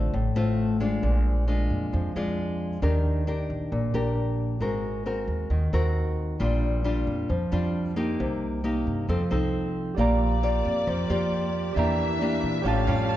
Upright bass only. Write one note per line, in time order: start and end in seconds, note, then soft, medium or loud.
0.00 0.12 A1 medium
0.14 0.34 A1 medium
0.36 0.99 A1 medium
1.03 1.66 A#1 loud
1.70 1.91 F2 medium
1.94 2.14 F2 medium
2.16 2.79 F2 medium
2.82 3.46 D#2 medium
3.50 3.70 A#1 medium
3.72 3.93 A#1 medium
3.94 4.57 A#1 medium
4.61 5.24 G#1 medium
5.28 5.49 D#2 medium
5.50 5.71 D#2 medium
5.73 6.36 D#2 medium
6.40 7.03 A#1 medium
7.07 7.28 F2 medium
7.30 7.50 F2 medium
7.52 8.15 F2 medium
8.20 8.83 C2 loud
8.87 9.07 G2 medium
9.09 9.29 F2 medium
9.31 9.94 C2 medium
9.97 10.61 A#1 medium
10.65 10.86 F2 medium
10.87 11.08 F2 medium
11.09 11.72 F2 medium
11.76 12.39 E2 medium
12.43 12.64 A#2 medium
12.65 12.86 A1 medium
12.87 13.17 F2 medium